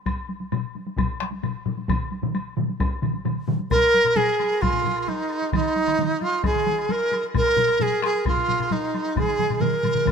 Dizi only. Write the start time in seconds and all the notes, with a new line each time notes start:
3.71 A#4
4.16 G#4
4.62 F4
5.08 D#4
5.54 D#4
6.22 F4
6.46 G#4
6.91 A#4
7.37 A#4
7.82 G#4
8.04 G#4
8.28 F4
8.72 D#4
9.18 G#4
9.61 A#4